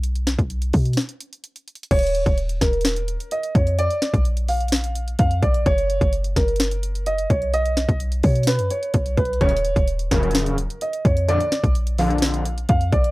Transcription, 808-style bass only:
\new Staff \with { instrumentName = "808-style bass" } { \clef bass \time 4/4 \key ees \minor \tempo 4 = 128 ces,8. ces,8. ces8 r2 | ees,,8. ees,,8. ees,,4~ ees,,16 r8. f,8~ | f,16 r8 bes,,2~ bes,,16 f,8 bes,,8 | ges,,8. ges,,8. ges,,2 ces,8~ |
ces,8. b,,8. b,8. fis,16 r8 b,,8 b,,8 | ees,,8. ees,,8. ees,,4~ ees,,16 r8. f,8~ | f,16 r8 bes,,2~ bes,,16 f,8 bes,,8 | }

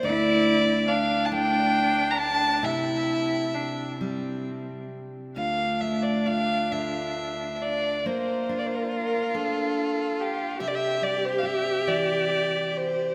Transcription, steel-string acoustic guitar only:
\new Staff \with { instrumentName = "Steel-string acoustic guitar" } { \time 6/8 \key d \minor \tempo 4. = 46 d,4. a4. | c4. g4. | <d, f'>8 a8 f'8 d4. | <bes bes'>8 d'4 d'4. |
<c g'>8 g8 g'8 e4. | }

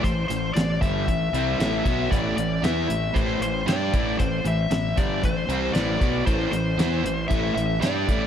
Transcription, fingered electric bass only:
\new Staff \with { instrumentName = "Fingered electric bass" } { \clef bass \time 4/4 \key a \minor \tempo 4 = 116 a,,8 a,,8 a,,8 g,,8 a,,8 c,8 a,,8 b,,8 | a,,8 a,,8 e,8 a,,8 a,,8 a,,8 g,8 a,,8 | a,,8 a,,8 a,,8 g,,8 a,,8 c,8 a,,8 b,,8 | a,,8 a,,8 e,8 a,,8 a,,8 a,,8 g,8 a,,8 | }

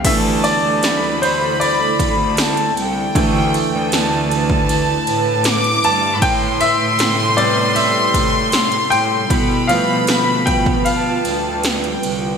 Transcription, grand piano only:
<<
  \new Staff \with { instrumentName = "Grand piano" } { \time 4/4 \key d \dorian \tempo 4 = 78 e''8 d''4 c''8 d''4. r8 | r2. r8 a''8 | g''8 e''4 d''8 e''4. g''8~ | g''8 f''4 g''8 f''4. r8 | }
  \new Staff \with { instrumentName = "Grand piano" } { \clef bass \time 4/4 \key d \dorian <d e a>4. r2 r8 | <d e a>8 r2. r8 | r4. <c g b>2~ <c g b>8 | r8 <f a b>4. r2 | }
>>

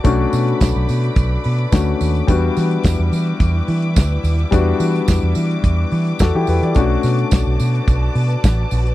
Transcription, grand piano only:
\new Staff \with { instrumentName = "Grand piano" } { \time 4/4 \key b \minor \tempo 4 = 107 << { r1 | r1 | r2. <fis' a'>16 <e' g'>16 <g' b'>16 <b' d''>16~ | <b' d''>16 r2. r8. | } \\ { <a cis' d' fis'>2. <a cis' d' fis'>4 | <g b d' fis'>1 | <g b d' fis'>1 | <a cis' d' fis'>1 | } >> }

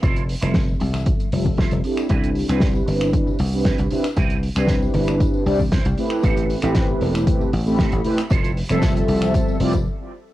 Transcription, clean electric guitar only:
\new Staff \with { instrumentName = "Clean electric guitar" } { \time 4/4 \key c \major \tempo 4 = 116 <e' f' a'>8 r16 <e' f' a'>16 r2 <e' f' a'>16 r8. | <c' e' b'>8 r16 <c' e' b'>16 r2 <c' e' b'>16 r8. | <c' e' b'>8 r16 <c' e' b'>16 r2 <c' e' c''>16 r8. | <c' g' a'>8 r16 <c' g' a'>16 r2 <c' g' a'>16 r8. |
<e' f' a'>8 r16 <e' f' a'>16 r2. | }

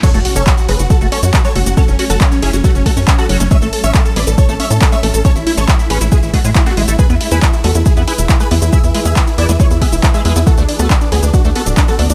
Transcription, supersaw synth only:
\new Staff \with { instrumentName = "Supersaw synth" } { \time 4/4 \key fis \minor \tempo 4 = 138 <a' cis''>16 fis'16 fis'16 <a' cis''>16 fis'16 fis'16 <gis' b'>16 fis'16 <fis' a'>16 fis'16 <a' cis''>16 fis'16 fis'16 <a' cis''>16 fis'16 fis'16 | <fis' a'>16 cis'16 cis'16 <fis' a'>16 cis'16 cis'16 <e' gis'>16 cis'16 <a fis'>16 cis'16 <fis' a'>16 cis'16 cis'16 <fis' a'>16 cis'16 cis'16 | <cis'' e''>16 a'16 a'16 <cis'' e''>16 a'16 a'16 <b' d''>16 a'16 <a' cis''>16 a'16 <cis'' e''>16 a'16 a'16 <cis'' e''>16 a'16 a'16 | <a' cis''>16 e'16 e'16 <a' cis''>16 e'16 e'16 <gis' b'>16 e'16 <e' gis'>16 e'16 <a fis'>16 e'16 e'16 <a fis'>16 e'16 e'16 |
<gis' b'>16 e'16 e'16 <gis' b'>16 e'16 e'16 <fis' a'>16 e'16 <e' gis'>16 e'16 <gis' b'>16 e'16 e'16 <gis' b'>16 e'16 e'16 | <gis' e''>16 e'16 e'16 <gis' e''>16 e'16 e'16 <b' d''>16 e'16 <e' cis''>16 e'16 <gis' e''>16 e'16 e'16 <gis' e''>16 e'16 e'16 | <fis' a'>16 d'16 d'16 <fis' a'>16 d'16 d'16 <b gis'>16 d'16 <d' fis'>16 d'16 <fis' a'>16 d'16 d'16 <fis' a'>16 d'16 d'16 | }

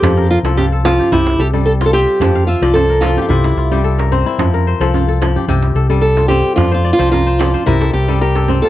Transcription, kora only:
<<
  \new Staff \with { instrumentName = "Kora" } { \time 4/4 \key f \major \tempo 4 = 110 r16 bes'8 a'16 f'16 a'8 g'16 g'8 a'16 a'8 f'8. | r16 f''16 e''16 d''16 c''16 bes'16 a'16 g'16 f'16 e'16 f'16 g'16 a'16 bes'16 c''16 e'16~ | e'16 bes'16 c''16 a'16 f'16 a'8 g'16 g'8 a'16 a'8 f'8. | d''16 c''16 d''16 c''16 bes'16 c''16 d''16 c''16 bes'16 a'16 g'16 a'16 bes'16 a'16 g'16 f'16 | }
  \new Staff \with { instrumentName = "Kora" } { \clef bass \time 4/4 \key f \major f8 r16 f8 r16 f8 c8 r16 g8 r16 c'8 | f8 r16 f8 r16 f8 c8 r16 g8 r16 c'8 | f8 r16 f8 r16 f8 c8 r16 g8 r16 c'8 | f8 r16 f8 r16 f8 c8 r16 g8 r16 c'8 | }
>>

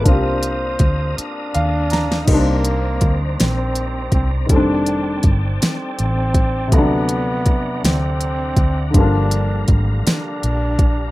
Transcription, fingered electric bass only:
\new Staff \with { instrumentName = "Fingered electric bass" } { \clef bass \time 6/8 \key c \minor \tempo 4. = 54 c,4 d,8 r8 ees,4 | c,4 d,8 bes,,4 c,8 | f,,4 g,,8 r8 a,,4 | d,4 e,8 d,4 d,8 |
g,,4 aes,,8 r8 bes,,4 | }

